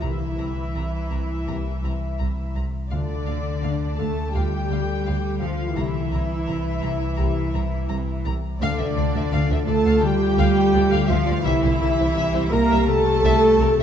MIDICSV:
0, 0, Header, 1, 9, 480
1, 0, Start_track
1, 0, Tempo, 722022
1, 24, Time_signature, 4, 2, 24, 8
1, 1944, Tempo, 710900
1, 9306, End_track
2, 0, Start_track
2, 0, Title_t, "Violin section"
2, 0, Program_c, 0, 48
2, 6, Note_on_c, 0, 82, 41
2, 59, Note_off_c, 0, 82, 0
2, 254, Note_on_c, 0, 82, 37
2, 308, Note_off_c, 0, 82, 0
2, 500, Note_on_c, 0, 82, 36
2, 553, Note_off_c, 0, 82, 0
2, 739, Note_on_c, 0, 82, 33
2, 792, Note_off_c, 0, 82, 0
2, 985, Note_on_c, 0, 82, 38
2, 1038, Note_off_c, 0, 82, 0
2, 1221, Note_on_c, 0, 82, 39
2, 1275, Note_off_c, 0, 82, 0
2, 1452, Note_on_c, 0, 82, 37
2, 1506, Note_off_c, 0, 82, 0
2, 1695, Note_on_c, 0, 82, 35
2, 1748, Note_off_c, 0, 82, 0
2, 1928, Note_on_c, 0, 77, 43
2, 1982, Note_off_c, 0, 77, 0
2, 2169, Note_on_c, 0, 77, 39
2, 2223, Note_off_c, 0, 77, 0
2, 2417, Note_on_c, 0, 77, 43
2, 2471, Note_off_c, 0, 77, 0
2, 2663, Note_on_c, 0, 77, 36
2, 2717, Note_off_c, 0, 77, 0
2, 2902, Note_on_c, 0, 77, 43
2, 2956, Note_off_c, 0, 77, 0
2, 3150, Note_on_c, 0, 77, 42
2, 3204, Note_off_c, 0, 77, 0
2, 3385, Note_on_c, 0, 77, 42
2, 3439, Note_off_c, 0, 77, 0
2, 3630, Note_on_c, 0, 77, 44
2, 3684, Note_off_c, 0, 77, 0
2, 3866, Note_on_c, 0, 82, 49
2, 3920, Note_off_c, 0, 82, 0
2, 4099, Note_on_c, 0, 82, 47
2, 4153, Note_off_c, 0, 82, 0
2, 4342, Note_on_c, 0, 82, 47
2, 4396, Note_off_c, 0, 82, 0
2, 4573, Note_on_c, 0, 82, 44
2, 4627, Note_off_c, 0, 82, 0
2, 4805, Note_on_c, 0, 82, 55
2, 4859, Note_off_c, 0, 82, 0
2, 5060, Note_on_c, 0, 82, 51
2, 5114, Note_off_c, 0, 82, 0
2, 5299, Note_on_c, 0, 82, 54
2, 5353, Note_off_c, 0, 82, 0
2, 5542, Note_on_c, 0, 82, 55
2, 5596, Note_off_c, 0, 82, 0
2, 5787, Note_on_c, 0, 77, 72
2, 5900, Note_off_c, 0, 77, 0
2, 5903, Note_on_c, 0, 76, 48
2, 5952, Note_off_c, 0, 76, 0
2, 6028, Note_on_c, 0, 74, 51
2, 6076, Note_off_c, 0, 74, 0
2, 6153, Note_on_c, 0, 76, 49
2, 6200, Note_off_c, 0, 76, 0
2, 6265, Note_on_c, 0, 77, 72
2, 6377, Note_off_c, 0, 77, 0
2, 6393, Note_on_c, 0, 76, 54
2, 6440, Note_off_c, 0, 76, 0
2, 6505, Note_on_c, 0, 74, 49
2, 6552, Note_off_c, 0, 74, 0
2, 6624, Note_on_c, 0, 77, 64
2, 6735, Note_off_c, 0, 77, 0
2, 6979, Note_on_c, 0, 77, 77
2, 7092, Note_off_c, 0, 77, 0
2, 7219, Note_on_c, 0, 74, 64
2, 7268, Note_off_c, 0, 74, 0
2, 7333, Note_on_c, 0, 77, 76
2, 7447, Note_on_c, 0, 76, 63
2, 7448, Note_off_c, 0, 77, 0
2, 7498, Note_off_c, 0, 76, 0
2, 7573, Note_on_c, 0, 74, 62
2, 7622, Note_off_c, 0, 74, 0
2, 7696, Note_on_c, 0, 76, 78
2, 7809, Note_off_c, 0, 76, 0
2, 7823, Note_on_c, 0, 72, 51
2, 7870, Note_off_c, 0, 72, 0
2, 7942, Note_on_c, 0, 70, 54
2, 7990, Note_off_c, 0, 70, 0
2, 8065, Note_on_c, 0, 72, 58
2, 8112, Note_off_c, 0, 72, 0
2, 8180, Note_on_c, 0, 76, 87
2, 8292, Note_off_c, 0, 76, 0
2, 8305, Note_on_c, 0, 72, 59
2, 8352, Note_off_c, 0, 72, 0
2, 8428, Note_on_c, 0, 70, 53
2, 8475, Note_off_c, 0, 70, 0
2, 8549, Note_on_c, 0, 76, 69
2, 8658, Note_off_c, 0, 76, 0
2, 8914, Note_on_c, 0, 76, 82
2, 9021, Note_off_c, 0, 76, 0
2, 9161, Note_on_c, 0, 70, 67
2, 9205, Note_off_c, 0, 70, 0
2, 9285, Note_on_c, 0, 76, 69
2, 9306, Note_off_c, 0, 76, 0
2, 9306, End_track
3, 0, Start_track
3, 0, Title_t, "Violin section"
3, 0, Program_c, 1, 48
3, 16, Note_on_c, 1, 76, 51
3, 1674, Note_off_c, 1, 76, 0
3, 1929, Note_on_c, 1, 74, 57
3, 2631, Note_off_c, 1, 74, 0
3, 2649, Note_on_c, 1, 81, 55
3, 2892, Note_on_c, 1, 79, 60
3, 2897, Note_off_c, 1, 81, 0
3, 3619, Note_off_c, 1, 79, 0
3, 3622, Note_on_c, 1, 77, 54
3, 3858, Note_off_c, 1, 77, 0
3, 3866, Note_on_c, 1, 76, 63
3, 5546, Note_off_c, 1, 76, 0
3, 5779, Note_on_c, 1, 74, 74
3, 6474, Note_off_c, 1, 74, 0
3, 6501, Note_on_c, 1, 81, 82
3, 6736, Note_off_c, 1, 81, 0
3, 6740, Note_on_c, 1, 79, 88
3, 7459, Note_off_c, 1, 79, 0
3, 7460, Note_on_c, 1, 77, 75
3, 7700, Note_off_c, 1, 77, 0
3, 7701, Note_on_c, 1, 76, 89
3, 8421, Note_off_c, 1, 76, 0
3, 8429, Note_on_c, 1, 82, 84
3, 8666, Note_off_c, 1, 82, 0
3, 8666, Note_on_c, 1, 81, 94
3, 9306, Note_off_c, 1, 81, 0
3, 9306, End_track
4, 0, Start_track
4, 0, Title_t, "Viola section"
4, 0, Program_c, 2, 48
4, 23, Note_on_c, 2, 64, 54
4, 1677, Note_off_c, 2, 64, 0
4, 1938, Note_on_c, 2, 62, 59
4, 2635, Note_off_c, 2, 62, 0
4, 2666, Note_on_c, 2, 69, 62
4, 2905, Note_off_c, 2, 69, 0
4, 2908, Note_on_c, 2, 67, 69
4, 3613, Note_off_c, 2, 67, 0
4, 3635, Note_on_c, 2, 65, 65
4, 3866, Note_on_c, 2, 64, 68
4, 3870, Note_off_c, 2, 65, 0
4, 5519, Note_off_c, 2, 64, 0
4, 5796, Note_on_c, 2, 62, 81
4, 6482, Note_off_c, 2, 62, 0
4, 6506, Note_on_c, 2, 69, 88
4, 6742, Note_on_c, 2, 67, 104
4, 6744, Note_off_c, 2, 69, 0
4, 7460, Note_off_c, 2, 67, 0
4, 7464, Note_on_c, 2, 65, 86
4, 7698, Note_on_c, 2, 64, 96
4, 7702, Note_off_c, 2, 65, 0
4, 8405, Note_off_c, 2, 64, 0
4, 8420, Note_on_c, 2, 70, 104
4, 8662, Note_off_c, 2, 70, 0
4, 8668, Note_on_c, 2, 69, 114
4, 9306, Note_off_c, 2, 69, 0
4, 9306, End_track
5, 0, Start_track
5, 0, Title_t, "French horn section"
5, 0, Program_c, 3, 60
5, 28, Note_on_c, 3, 58, 40
5, 28, Note_on_c, 3, 67, 41
5, 197, Note_off_c, 3, 58, 0
5, 197, Note_off_c, 3, 67, 0
5, 976, Note_on_c, 3, 58, 41
5, 979, Note_on_c, 3, 67, 42
5, 1150, Note_off_c, 3, 58, 0
5, 1152, Note_off_c, 3, 67, 0
5, 1926, Note_on_c, 3, 57, 44
5, 1928, Note_on_c, 3, 65, 42
5, 2104, Note_off_c, 3, 57, 0
5, 2105, Note_off_c, 3, 65, 0
5, 2907, Note_on_c, 3, 57, 47
5, 2907, Note_on_c, 3, 65, 43
5, 3076, Note_off_c, 3, 57, 0
5, 3076, Note_off_c, 3, 65, 0
5, 3843, Note_on_c, 3, 58, 51
5, 3851, Note_on_c, 3, 67, 55
5, 4022, Note_off_c, 3, 58, 0
5, 4026, Note_off_c, 3, 67, 0
5, 4809, Note_on_c, 3, 58, 54
5, 4811, Note_on_c, 3, 67, 56
5, 4984, Note_off_c, 3, 58, 0
5, 4985, Note_off_c, 3, 67, 0
5, 5784, Note_on_c, 3, 57, 78
5, 5785, Note_on_c, 3, 65, 77
5, 7671, Note_off_c, 3, 57, 0
5, 7671, Note_off_c, 3, 65, 0
5, 7687, Note_on_c, 3, 46, 89
5, 7692, Note_on_c, 3, 67, 90
5, 9306, Note_off_c, 3, 46, 0
5, 9306, Note_off_c, 3, 67, 0
5, 9306, End_track
6, 0, Start_track
6, 0, Title_t, "Cello section"
6, 0, Program_c, 4, 48
6, 18, Note_on_c, 4, 52, 48
6, 1701, Note_off_c, 4, 52, 0
6, 1940, Note_on_c, 4, 50, 51
6, 2636, Note_off_c, 4, 50, 0
6, 2664, Note_on_c, 4, 57, 53
6, 2904, Note_off_c, 4, 57, 0
6, 2905, Note_on_c, 4, 55, 59
6, 3611, Note_off_c, 4, 55, 0
6, 3624, Note_on_c, 4, 53, 57
6, 3862, Note_on_c, 4, 52, 58
6, 3864, Note_off_c, 4, 53, 0
6, 5517, Note_off_c, 4, 52, 0
6, 5790, Note_on_c, 4, 50, 71
6, 6479, Note_off_c, 4, 50, 0
6, 6502, Note_on_c, 4, 57, 76
6, 6742, Note_off_c, 4, 57, 0
6, 6742, Note_on_c, 4, 55, 80
6, 7456, Note_on_c, 4, 53, 81
6, 7460, Note_off_c, 4, 55, 0
6, 7694, Note_on_c, 4, 52, 77
6, 7698, Note_off_c, 4, 53, 0
6, 8403, Note_off_c, 4, 52, 0
6, 8419, Note_on_c, 4, 58, 86
6, 8661, Note_off_c, 4, 58, 0
6, 8663, Note_on_c, 4, 57, 89
6, 9306, Note_off_c, 4, 57, 0
6, 9306, End_track
7, 0, Start_track
7, 0, Title_t, "Harp"
7, 0, Program_c, 5, 46
7, 19, Note_on_c, 5, 48, 50
7, 245, Note_off_c, 5, 48, 0
7, 253, Note_on_c, 5, 48, 38
7, 493, Note_off_c, 5, 48, 0
7, 501, Note_on_c, 5, 48, 35
7, 736, Note_off_c, 5, 48, 0
7, 744, Note_on_c, 5, 48, 40
7, 974, Note_off_c, 5, 48, 0
7, 982, Note_on_c, 5, 48, 48
7, 1217, Note_off_c, 5, 48, 0
7, 1225, Note_on_c, 5, 48, 35
7, 1453, Note_off_c, 5, 48, 0
7, 1461, Note_on_c, 5, 48, 40
7, 1701, Note_off_c, 5, 48, 0
7, 1709, Note_on_c, 5, 48, 39
7, 1939, Note_on_c, 5, 50, 53
7, 1964, Note_off_c, 5, 48, 0
7, 2183, Note_off_c, 5, 50, 0
7, 2191, Note_on_c, 5, 50, 40
7, 2420, Note_off_c, 5, 50, 0
7, 2429, Note_on_c, 5, 50, 37
7, 2658, Note_off_c, 5, 50, 0
7, 2666, Note_on_c, 5, 50, 40
7, 2897, Note_off_c, 5, 50, 0
7, 2906, Note_on_c, 5, 50, 56
7, 3139, Note_off_c, 5, 50, 0
7, 3147, Note_on_c, 5, 50, 43
7, 3383, Note_off_c, 5, 50, 0
7, 3391, Note_on_c, 5, 50, 43
7, 3616, Note_off_c, 5, 50, 0
7, 3625, Note_on_c, 5, 50, 46
7, 3862, Note_on_c, 5, 48, 64
7, 3884, Note_off_c, 5, 50, 0
7, 4090, Note_off_c, 5, 48, 0
7, 4098, Note_on_c, 5, 48, 49
7, 4334, Note_off_c, 5, 48, 0
7, 4342, Note_on_c, 5, 48, 43
7, 4573, Note_off_c, 5, 48, 0
7, 4581, Note_on_c, 5, 48, 48
7, 4811, Note_off_c, 5, 48, 0
7, 4819, Note_on_c, 5, 48, 68
7, 5042, Note_off_c, 5, 48, 0
7, 5050, Note_on_c, 5, 48, 55
7, 5285, Note_off_c, 5, 48, 0
7, 5293, Note_on_c, 5, 48, 53
7, 5531, Note_off_c, 5, 48, 0
7, 5540, Note_on_c, 5, 48, 54
7, 5781, Note_on_c, 5, 50, 75
7, 5805, Note_off_c, 5, 48, 0
7, 6015, Note_off_c, 5, 50, 0
7, 6023, Note_on_c, 5, 50, 53
7, 6255, Note_off_c, 5, 50, 0
7, 6263, Note_on_c, 5, 50, 55
7, 6491, Note_off_c, 5, 50, 0
7, 6499, Note_on_c, 5, 50, 58
7, 6724, Note_off_c, 5, 50, 0
7, 6732, Note_on_c, 5, 50, 81
7, 6966, Note_off_c, 5, 50, 0
7, 6974, Note_on_c, 5, 50, 62
7, 7205, Note_off_c, 5, 50, 0
7, 7213, Note_on_c, 5, 50, 62
7, 7443, Note_off_c, 5, 50, 0
7, 7451, Note_on_c, 5, 50, 60
7, 7696, Note_on_c, 5, 48, 83
7, 7715, Note_off_c, 5, 50, 0
7, 7919, Note_off_c, 5, 48, 0
7, 7927, Note_on_c, 5, 48, 63
7, 8161, Note_off_c, 5, 48, 0
7, 8169, Note_on_c, 5, 48, 57
7, 8412, Note_off_c, 5, 48, 0
7, 8420, Note_on_c, 5, 48, 64
7, 8647, Note_off_c, 5, 48, 0
7, 8655, Note_on_c, 5, 48, 89
7, 8890, Note_off_c, 5, 48, 0
7, 8898, Note_on_c, 5, 48, 65
7, 9134, Note_off_c, 5, 48, 0
7, 9143, Note_on_c, 5, 48, 61
7, 9306, Note_off_c, 5, 48, 0
7, 9306, End_track
8, 0, Start_track
8, 0, Title_t, "Double bass section"
8, 0, Program_c, 6, 48
8, 17, Note_on_c, 6, 36, 45
8, 70, Note_off_c, 6, 36, 0
8, 255, Note_on_c, 6, 36, 42
8, 308, Note_off_c, 6, 36, 0
8, 500, Note_on_c, 6, 36, 42
8, 554, Note_off_c, 6, 36, 0
8, 741, Note_on_c, 6, 36, 41
8, 794, Note_off_c, 6, 36, 0
8, 981, Note_on_c, 6, 36, 45
8, 1034, Note_off_c, 6, 36, 0
8, 1216, Note_on_c, 6, 36, 44
8, 1269, Note_off_c, 6, 36, 0
8, 1461, Note_on_c, 6, 36, 43
8, 1515, Note_off_c, 6, 36, 0
8, 1703, Note_on_c, 6, 36, 41
8, 1756, Note_off_c, 6, 36, 0
8, 1941, Note_on_c, 6, 38, 50
8, 1995, Note_off_c, 6, 38, 0
8, 2177, Note_on_c, 6, 38, 43
8, 2232, Note_off_c, 6, 38, 0
8, 2421, Note_on_c, 6, 38, 45
8, 2475, Note_off_c, 6, 38, 0
8, 2663, Note_on_c, 6, 38, 45
8, 2717, Note_off_c, 6, 38, 0
8, 2908, Note_on_c, 6, 38, 50
8, 2962, Note_off_c, 6, 38, 0
8, 3148, Note_on_c, 6, 38, 48
8, 3202, Note_off_c, 6, 38, 0
8, 3389, Note_on_c, 6, 38, 48
8, 3443, Note_off_c, 6, 38, 0
8, 3626, Note_on_c, 6, 38, 49
8, 3680, Note_off_c, 6, 38, 0
8, 3866, Note_on_c, 6, 36, 54
8, 3920, Note_off_c, 6, 36, 0
8, 4111, Note_on_c, 6, 36, 52
8, 4165, Note_off_c, 6, 36, 0
8, 4343, Note_on_c, 6, 36, 55
8, 4397, Note_off_c, 6, 36, 0
8, 4582, Note_on_c, 6, 36, 54
8, 4636, Note_off_c, 6, 36, 0
8, 4826, Note_on_c, 6, 36, 55
8, 4880, Note_off_c, 6, 36, 0
8, 5063, Note_on_c, 6, 36, 57
8, 5117, Note_off_c, 6, 36, 0
8, 5302, Note_on_c, 6, 36, 56
8, 5356, Note_off_c, 6, 36, 0
8, 5542, Note_on_c, 6, 36, 60
8, 5596, Note_off_c, 6, 36, 0
8, 5787, Note_on_c, 6, 38, 77
8, 5836, Note_off_c, 6, 38, 0
8, 5913, Note_on_c, 6, 38, 51
8, 5960, Note_off_c, 6, 38, 0
8, 6031, Note_on_c, 6, 38, 56
8, 6079, Note_off_c, 6, 38, 0
8, 6146, Note_on_c, 6, 38, 53
8, 6194, Note_off_c, 6, 38, 0
8, 6265, Note_on_c, 6, 38, 79
8, 6313, Note_off_c, 6, 38, 0
8, 6389, Note_on_c, 6, 38, 56
8, 6436, Note_off_c, 6, 38, 0
8, 6504, Note_on_c, 6, 38, 57
8, 6552, Note_off_c, 6, 38, 0
8, 6622, Note_on_c, 6, 38, 76
8, 6670, Note_off_c, 6, 38, 0
8, 6980, Note_on_c, 6, 38, 81
8, 7029, Note_off_c, 6, 38, 0
8, 7216, Note_on_c, 6, 38, 58
8, 7265, Note_off_c, 6, 38, 0
8, 7335, Note_on_c, 6, 38, 80
8, 7384, Note_off_c, 6, 38, 0
8, 7456, Note_on_c, 6, 38, 62
8, 7505, Note_off_c, 6, 38, 0
8, 7580, Note_on_c, 6, 38, 58
8, 7628, Note_off_c, 6, 38, 0
8, 7692, Note_on_c, 6, 36, 85
8, 7741, Note_off_c, 6, 36, 0
8, 7819, Note_on_c, 6, 36, 57
8, 7867, Note_off_c, 6, 36, 0
8, 7939, Note_on_c, 6, 36, 61
8, 7987, Note_off_c, 6, 36, 0
8, 8061, Note_on_c, 6, 36, 58
8, 8108, Note_off_c, 6, 36, 0
8, 8177, Note_on_c, 6, 36, 80
8, 8225, Note_off_c, 6, 36, 0
8, 8301, Note_on_c, 6, 36, 60
8, 8349, Note_off_c, 6, 36, 0
8, 8422, Note_on_c, 6, 36, 62
8, 8470, Note_off_c, 6, 36, 0
8, 8543, Note_on_c, 6, 36, 85
8, 8591, Note_off_c, 6, 36, 0
8, 8904, Note_on_c, 6, 36, 90
8, 8952, Note_off_c, 6, 36, 0
8, 9143, Note_on_c, 6, 36, 61
8, 9191, Note_off_c, 6, 36, 0
8, 9264, Note_on_c, 6, 36, 81
8, 9306, Note_off_c, 6, 36, 0
8, 9306, End_track
9, 0, Start_track
9, 0, Title_t, "Sub bass"
9, 0, Program_c, 7, 38
9, 18, Note_on_c, 7, 36, 66
9, 1942, Note_on_c, 7, 38, 69
9, 1952, Note_off_c, 7, 36, 0
9, 3851, Note_on_c, 7, 36, 74
9, 3861, Note_off_c, 7, 38, 0
9, 5792, Note_on_c, 7, 38, 72
9, 5802, Note_off_c, 7, 36, 0
9, 7709, Note_on_c, 7, 36, 80
9, 7719, Note_off_c, 7, 38, 0
9, 9306, Note_off_c, 7, 36, 0
9, 9306, End_track
0, 0, End_of_file